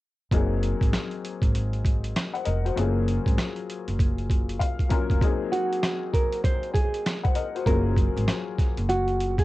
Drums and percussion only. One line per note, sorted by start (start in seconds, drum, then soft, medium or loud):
0.31 kick loud
0.31 closed hi-hat medium
0.63 closed hi-hat medium
0.81 kick medium
0.81 closed hi-hat medium
0.93 cross-stick medium
0.93 snare loud
0.93 closed hi-hat medium
1.11 closed hi-hat soft
1.25 closed hi-hat medium
1.42 kick medium
1.42 closed hi-hat medium
1.55 closed hi-hat medium
1.73 closed hi-hat soft
1.85 kick medium
1.85 closed hi-hat medium
2.04 closed hi-hat medium
2.16 cross-stick medium
2.16 snare loud
2.16 closed hi-hat loud
2.35 closed hi-hat soft
2.45 closed hi-hat medium
2.66 closed hi-hat soft
2.77 closed hi-hat medium
3.08 closed hi-hat medium
3.26 kick medium
3.26 closed hi-hat medium
3.38 cross-stick medium
3.38 snare loud
3.38 closed hi-hat medium
3.56 closed hi-hat soft
3.70 closed hi-hat medium
3.88 closed hi-hat medium
3.99 kick loud
3.99 closed hi-hat medium
4.18 closed hi-hat soft
4.30 kick medium
4.30 closed hi-hat medium
4.49 closed hi-hat medium
4.60 kick medium
4.60 closed hi-hat loud
4.79 kick medium
4.79 closed hi-hat soft
4.90 kick medium
4.90 closed hi-hat medium
5.10 kick medium
5.10 closed hi-hat soft
5.21 kick loud
5.21 closed hi-hat medium
5.53 closed hi-hat medium
5.73 closed hi-hat medium
5.83 cross-stick medium
5.83 snare loud
5.83 closed hi-hat medium
6.14 kick medium
6.14 closed hi-hat medium
6.32 closed hi-hat medium
6.44 kick medium
6.44 closed hi-hat medium
6.63 closed hi-hat soft
6.75 kick medium
6.75 closed hi-hat medium
6.94 closed hi-hat medium
7.06 cross-stick medium
7.06 snare loud
7.06 closed hi-hat loud
7.25 kick loud
7.25 closed hi-hat soft
7.35 closed hi-hat medium
7.56 closed hi-hat soft
7.66 kick loud
7.66 closed hi-hat medium
7.97 kick medium
7.97 closed hi-hat medium
8.18 closed hi-hat medium
8.28 cross-stick medium
8.28 snare loud
8.28 closed hi-hat medium
8.59 kick loud
8.59 snare soft
8.59 closed hi-hat medium
8.77 closed hi-hat medium
8.89 closed hi-hat medium
9.08 closed hi-hat soft
9.20 closed hi-hat medium
9.38 kick medium
9.38 closed hi-hat medium